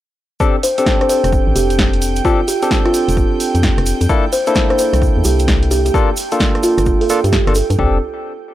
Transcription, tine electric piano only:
0.40 C4 D4 G4 A4
0.78 C4 D4 G4 A4
2.25 C4 D4 G4 A4
2.63 C4 D4 G4 A4
4.09 A#3 D4 E4 A4
4.47 A#3 D4 E4 A4
5.94 A#3 D4 F4 A4
6.32 A#3 D4 F4 A4
7.10 A#3 D4 F4 A4
7.47 A#3 D4 F4 A4
7.79 C4 D4 G4 A4

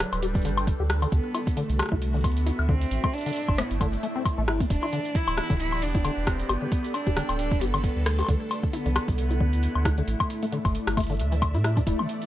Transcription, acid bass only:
0.23 G4
0.45 D3
0.80 G4
1.02 D3
1.35 E4
1.57 D3
1.92 E4
2.14 D3
2.46 E4
2.69 D3
3.04 A3
3.26 D3
3.58 A3
3.81 D3
4.03 A3
4.16 C4
4.38 A3
4.48 E4
4.60 A3
4.83 E4
4.93 D3
5.38 E4
5.50 D3
5.95 E4
6.05 D3
6.49 G4
6.62 D3
7.07 G4
7.17 D3
7.61 G4
7.74 D3
8.19 G4
8.29 D3
8.73 E4
8.86 D3
9.31 E4
9.40 D3
9.85 E4
9.98 D3
10.43 A3
10.52 D3
10.97 A3
11.10 D3
11.32 E3
11.55 E4
11.64 E4
11.77 D4
11.87 E4
11.99 D3

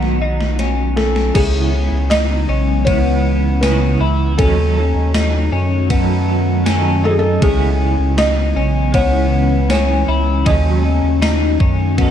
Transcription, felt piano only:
Already playing: B4
0.96 A4
1.35 G#4
2.10 D#5
2.85 C#5
3.61 B4
4.38 A4
7.05 A4
7.11 G#4
7.19 A4
7.42 G#4
8.18 D#5
8.94 C#5
9.70 C#5
10.46 D#5

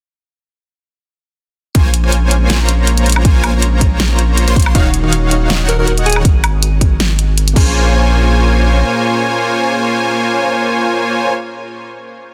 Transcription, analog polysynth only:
1.75 A#3 F4 C5 C#5 G#5
2.04 A#3 F4 C5 C#5 G#5
2.60 A#3 F4 C5 C#5 A#5
3.25 A#3 F4 C5 C#5 G#5
3.54 A#3 F4 C5 C#5 A#5
4.47 A#3 F4 C5 C#5 C6
4.75 D#3 D#4 F#4 C#5 F5
5.04 D#3 D#4 F#4 C#5 F5
5.60 D#3 D#4 F#4 C#5 F#5
7.56 A#3 F4 C5 C#5 G#5

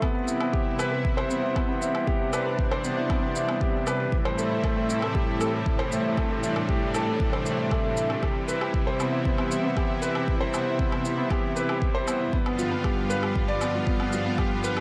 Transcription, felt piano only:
0.02 B3
0.15 B3
0.27 E4
0.40 B3
0.53 G4
0.79 B4
0.92 B4
1.17 C5
1.30 B3
1.43 E4
1.55 B3
1.68 B3
1.81 E4
1.94 B3
2.07 G4
2.33 B4
2.46 B4
2.71 C5
2.84 B3
2.97 E4
3.10 B3
3.23 B3
3.36 E4
3.49 B3
3.61 G4
3.87 B4
4.00 B4
4.25 C5
4.38 A3
4.51 E4
4.63 A3
4.77 A3
4.89 E4
5.02 A3
5.15 G4
5.41 A4
5.53 A4
5.79 C5
5.92 A3
6.05 E4
6.18 A3
6.30 A3
6.43 E4
6.56 A3
6.69 G4
6.94 A4
7.07 A4
7.33 C5
7.46 A3
7.59 E4
7.72 A3
7.84 A3
7.97 E4
8.10 A3
8.23 G4
8.48 B4
8.61 G4
8.87 C5
9.00 B3
9.13 E4
9.25 B3
9.39 B3
9.51 E4
9.64 B3
9.77 G4
10.02 B4
10.15 G4
10.41 C5
10.53 B3
10.66 E4
10.79 B3
10.92 B3
11.05 E4
11.17 B3
11.30 G4
11.56 B4
11.69 G4
11.95 C5
12.07 B3
12.20 E4
12.33 B3
12.46 B3
12.59 F4
12.71 B3
12.84 G4
13.10 B4
13.23 G4
13.48 D5
13.61 B3
13.74 F4
13.87 B3
14.00 B3
14.12 F4
14.26 B3
14.38 G4
14.64 B4
14.77 G4

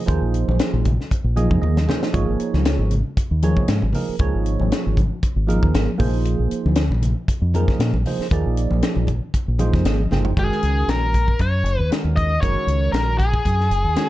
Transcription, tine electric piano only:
0.06 F3 A#3 D#4 G#4 C5
1.36 F3 A#3 D#4 G#4 D#5 G#5
1.62 D#5
1.88 F3 A#3 D#4 G#4 C5
2.13 F3 A#3 D#4 G#4 C#5
3.43 F3 A#3 D#4 G#4 C#5
3.94 F3 A#3 D#4 G#4 A#4
4.19 F3 A#3 D#4 G#4 C#5
5.47 F3 A#3 D#4 G#4 A#4
5.98 F3 A#3 D#4 G#4 C5
7.54 F3 A#3 D#4 G#4 A#4
8.06 F3 A#3 D#4 G#4 C5
8.31 F3 A#3 D#4 G#4 D5
9.59 F3 A#3 D#4 G#4 C5
9.86 D#5
10.12 F3 A#3 D#4 G#4 C5 G5
10.37 D#3 G#3 C#4 F#4 A#4
11.91 D#3 G#3 C#4 F#4 A#4
12.42 D#3 G#3 C#4 F#4 A#4
13.96 D#3 G#3 C#4 F#4 C#5

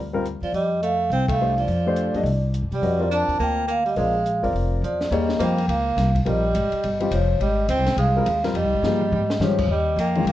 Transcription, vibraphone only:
0.43 D5
0.54 D#5
0.84 F5
1.13 G5
1.31 F5
1.59 D5
2.75 D5
3.14 A5
3.43 G5
3.71 F5
3.89 D#5
3.99 F5
4.84 D5
5.14 D#5
5.43 G5
5.71 F5
6.28 D#5
7.13 C#5
7.42 D#5
7.70 G5
7.99 F5
8.56 D#5
9.42 C#5
9.71 D#5
10.00 G5
10.29 F5

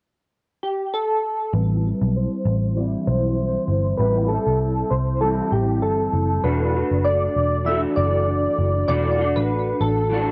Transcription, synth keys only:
0.63 G4
0.94 A4
1.54 B4
2.16 C5
2.77 D5
3.07 C5
3.98 B4
4.28 A4
4.90 C5
5.21 A4
5.52 G4
5.82 A4
6.44 B4
7.04 D5
7.66 E5
7.96 D5
8.88 D5
9.36 B4
9.81 A4

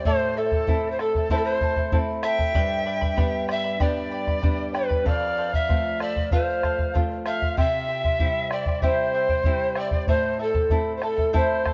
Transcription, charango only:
0.06 E4 A4 C5 E5 A5
0.37 E4 A4 E5 A5
0.52 E4 A4 A5
0.68 E4 A4 E5 A5
0.99 E4 A4 E5 A5
1.16 E4 A4 A5
1.31 E4 A4 C5 E5 A5
1.61 E4 A4 E5 A5
1.76 E4 A4 A5
1.92 E4 A4 E5 A5
2.23 E4 A4 E5 A5
2.38 E4 A4 A5
2.54 G4 B4 D5 G5 B5
2.85 B4 D5 G5 B5
3.01 B4 D5 B5
3.16 B4 D5 G5 B5
3.48 B4 D5 G5 B5
3.64 B4 D5 B5
3.80 G4 B4 D5 G5 B5
4.11 B4 D5 G5 B5
4.27 B4 D5 B5
4.42 B4 D5 G5 B5
4.74 B4 D5 G5 B5
4.89 B4 D5 B5
5.05 A4 C5 F5
5.37 A4 C5 F5
5.53 C5 F5
5.68 A4 C5
5.99 A4 C5 F5
6.16 C5 F5
6.31 A4 C5 F5
6.63 A4 C5 F5
6.79 C5 F5
6.94 A4 C5 F5
7.26 A4 C5 F5
7.41 C5 F5
7.57 E4 G4 C5 E5 G5
7.88 E4 C5 E5 G5
8.03 E4 C5 G5
8.20 E4 C5 E5 G5
8.52 E4 C5 E5 G5
8.67 E4 C5 G5
8.82 E4 G4 C5 E5 G5
9.14 E4 C5 E5 G5
9.30 E4 C5 G5
9.45 E4 C5 E5 G5
9.76 E4 C5 E5 G5
9.92 E4 C5 G5
10.08 E4 A4 C5 E5 A5
10.39 E4 A4 E5 A5
10.54 E4 A4 A5
10.70 E4 A4 E5 A5
11.02 E4 A4 E5 A5
11.17 E4 A4 A5
11.33 E4 A4 C5 E5 A5
11.65 E4 A4 E5 A5

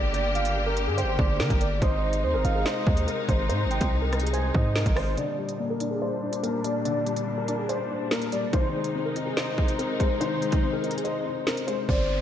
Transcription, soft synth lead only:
0.35 F5
0.98 G5
1.19 D5
1.82 D#5
2.24 C5
2.45 F5
2.66 D#5
3.71 G5
4.34 G#5
4.55 D#5
11.89 C5

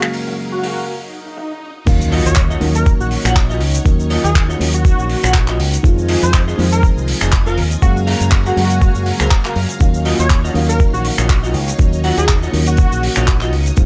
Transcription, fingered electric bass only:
1.87 D#2
2.26 D#2
2.61 D#2
3.00 A#1
3.25 A#1
3.61 C#2
3.85 D#2
4.24 D#2
4.60 D#2
4.99 A#1
5.24 A#1
5.60 C#2
5.84 F2
6.23 F2
6.58 F2
6.97 C2
7.22 F1
7.57 D#2
7.82 F#2
8.21 F#2
8.57 F#2
8.95 F#2
9.20 C#2
9.56 F#2
9.81 D#2
10.19 D#2
10.55 D#2
10.93 A#1
11.18 A#1
11.54 C#2
11.79 D#2
12.17 D#2
12.53 D#2
12.92 A#1
13.17 A#1
13.53 C#2
13.78 F2

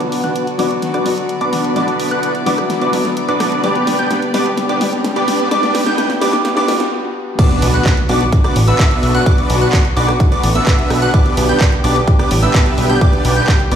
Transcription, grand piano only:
Already playing: F#3 B3 D4 F#4
0.58 F#3 B3 D4 F#4
1.05 F#3 B3 D4 F#4
1.75 F#3 B3 D4 F#4
2.46 F#3 B3 D4 F#4
2.92 F#3 B3 D4 F#4
3.63 G3 B3 D4 G4
4.34 G3 B3 D4 G4
4.80 G3 B3 D4 G4
5.50 G3 B3 D4 G4
6.21 G3 B3 D4 G4
6.67 G3 B3 D4 G4

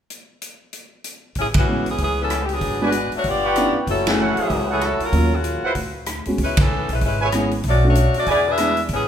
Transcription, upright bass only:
1.36 A1
1.99 C#2
2.61 G#1
3.12 muted upright bass stroke
3.24 G1
3.74 muted upright bass stroke
3.87 F#1
4.37 muted upright bass stroke
4.50 C#2
5.00 muted upright bass stroke
5.12 D#2
5.63 muted upright bass stroke
5.75 D2
6.26 D2
6.38 C#2
6.89 B1
7.01 G#1
7.64 B1
8.27 E2
8.89 A1

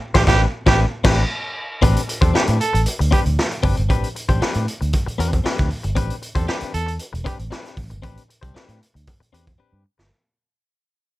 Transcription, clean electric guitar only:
0.14 C4 D4 G4 C5
0.27 C4 D4 G4 B4
0.66 C4 D4 G4 B4
1.04 C4 D4 G4 B4
1.82 C4 D4 G4 B4
2.08 muted clean electric guitar stroke
2.21 C4 D4 G4 C5
2.33 C4 D4 G4 B4
2.59 muted clean electric guitar stroke
2.73 muted clean electric guitar stroke
2.99 muted clean electric guitar stroke
3.11 C4 D4 G4 B4
3.25 muted clean electric guitar stroke
3.51 muted clean electric guitar stroke
3.63 C4 D4 G4 B4
3.77 muted clean electric guitar stroke
3.89 C4 D4 G4 B4
4.15 muted clean electric guitar stroke
4.29 C4 D4 G4 C5
4.41 C4 D4 G4 B4
4.81 muted clean electric guitar stroke
5.06 muted clean electric guitar stroke
5.18 C4 D4 G4 B4
5.32 muted clean electric guitar stroke
5.44 C4 D4 G4 B4
5.70 muted clean electric guitar stroke
5.83 muted clean electric guitar stroke
5.95 C4 D4 G4 B4
6.22 muted clean electric guitar stroke
6.35 C4 D4 G4 C5
6.47 C4 D4 G4 B4
6.73 muted clean electric guitar stroke
6.86 muted clean electric guitar stroke
7.13 muted clean electric guitar stroke
7.24 C4 D4 G4 B4
7.39 muted clean electric guitar stroke
7.51 C4 D4 G4 B4
7.77 muted clean electric guitar stroke
7.90 muted clean electric guitar stroke
8.02 C4 D4 G4 B4
8.28 muted clean electric guitar stroke
8.41 C4 D4 G4 C5
8.54 C4 D4 G4 B4
8.94 muted clean electric guitar stroke
9.20 muted clean electric guitar stroke
9.33 C4 D4 G4 B4
9.47 muted clean electric guitar stroke
9.58 C4 D4 G4 B4
9.84 muted clean electric guitar stroke
9.98 muted clean electric guitar stroke

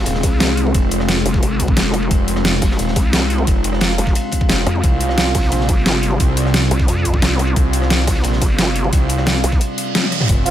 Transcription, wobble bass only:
0.23 C2
1.26 F1
1.43 G#1
1.77 F1
2.62 F1
2.96 C2
3.98 F1
4.67 F2
5.35 C2
5.69 G1
6.71 C2
6.88 F2
7.22 C2
8.07 C2
8.42 G1
9.44 C2

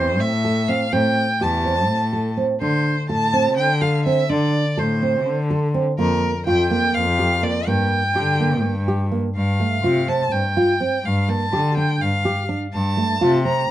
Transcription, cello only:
Already playing: E2
0.20 A2
0.93 A2
1.40 E2
1.88 A2
2.61 D3
3.09 A2
3.57 D3
4.30 D3
4.78 A2
5.26 D3
5.98 F2
6.46 F2
6.94 F2
7.66 G2
8.14 D3
8.63 G2
9.35 G2
9.83 C3
10.32 G2
11.04 G2
11.52 D3
12.01 G2
12.73 G2
13.21 C3

